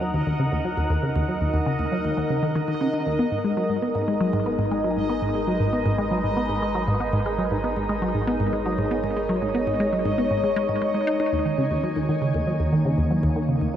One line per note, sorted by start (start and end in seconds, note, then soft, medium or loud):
0.00 3.17 D#2 medium
0.00 0.05 F#3 medium
0.00 13.76 D#4 medium
0.00 12.71 A#4 medium
0.00 4.33 D#5 medium
0.00 11.34 D#5 medium
0.00 4.44 F#5 medium
0.14 0.21 D#2 medium
0.27 0.33 D#2 loud
0.39 0.49 C#3 medium
0.52 0.59 D#2 medium
0.65 0.69 F#3 medium
0.77 0.84 D#2 medium
0.90 0.97 D#2 medium
1.03 1.13 C#3 medium
1.16 1.22 D#2 medium
1.28 1.32 F#3 medium
1.41 1.48 D#2 medium
1.54 1.60 D#2 loud
1.66 1.76 C#3 medium
1.79 1.86 D#2 medium
1.92 1.96 F#3 medium
2.05 2.11 D#2 medium
2.17 2.24 D#2 loud
2.30 2.40 C#3 medium
2.43 2.53 D#3 medium
2.55 2.59 D#3 loud
2.68 2.75 D#3 medium
2.81 2.88 C#3 medium
2.93 3.00 D#3 medium
3.06 3.16 D#2 loud
3.19 11.30 G#1 medium
3.19 11.33 G#3 medium
3.19 3.23 B3 medium
3.32 3.38 G#2 medium
3.44 3.51 G#3 medium
3.57 3.67 F#3 medium
3.70 3.76 G#2 medium
3.82 3.87 B3 medium
3.95 4.02 G#2 medium
4.08 4.15 G#3 medium
4.21 4.31 F#3 medium
4.33 4.40 G#2 medium
4.46 4.50 B3 medium
4.59 4.65 G#2 medium
4.71 4.78 G#3 medium
4.84 4.94 F#3 medium
4.97 5.04 G#2 medium
5.10 5.14 B3 medium
5.22 5.29 G#2 medium
5.27 8.32 B4 medium
5.35 5.42 G#3 medium
5.48 5.58 F#3 medium
5.60 5.67 G#2 medium
5.73 5.77 B3 medium
5.86 5.93 G#2 medium
5.99 6.05 G#3 medium
6.11 6.21 F#3 medium
6.24 6.31 G#2 medium
6.37 6.41 B3 medium
6.49 6.56 G#2 medium
6.62 6.69 G#3 medium
6.75 6.85 F#3 medium
6.88 6.94 G#2 medium
7.00 7.04 B3 medium
7.13 7.20 G#2 medium
7.26 7.32 G#3 medium
7.39 7.49 F#3 medium
7.51 7.58 G#2 medium
7.64 7.68 B3 medium
7.77 7.83 G#2 medium
7.89 7.96 G#3 medium
8.02 8.12 F#3 medium
8.15 8.21 G#2 medium
8.15 13.15 C#5 medium
8.28 8.32 B3 medium
8.40 8.47 G#2 medium
8.53 8.60 G#3 medium
8.66 8.76 F#3 medium
8.78 8.85 G#2 medium
8.91 8.95 B3 medium
9.04 9.10 G#2 medium
9.17 9.23 G#3 medium
9.29 9.39 F#3 medium
9.42 9.49 G#2 medium
9.55 9.59 B3 medium
9.67 9.74 G#2 medium
9.80 9.87 G#3 medium
9.93 10.03 F#3 medium
10.05 10.12 G#2 medium
10.18 10.22 B3 medium
10.31 10.37 G#2 medium
10.44 10.50 G#3 medium
10.56 10.63 G#3 loud
10.69 10.76 G#2 medium
10.82 10.88 G#3 medium
10.94 10.98 G#3 medium
11.07 11.17 D#4 loud
11.20 11.24 D#4 medium
11.33 13.76 D#2 medium
11.33 11.39 D#2 medium
11.33 13.76 D#3 medium
11.33 13.76 G#5 medium
11.45 11.52 D#3 medium
11.58 11.68 C#3 medium
11.71 11.77 D#2 medium
11.78 13.76 A#3 medium
11.83 11.87 F#3 medium
11.96 12.03 D#2 medium
12.09 12.16 D#3 medium
12.22 12.32 C#3 medium
12.34 12.41 D#2 medium
12.47 12.51 F#3 medium
12.60 12.66 D#2 medium
12.73 12.79 D#3 medium
12.85 12.95 C#3 medium
12.98 13.05 D#2 medium
13.11 13.15 F#3 medium
13.23 13.30 D#2 medium
13.36 13.43 D#3 medium
13.43 13.76 F#4 medium
13.49 13.59 C#3 medium
13.62 13.68 D#2 medium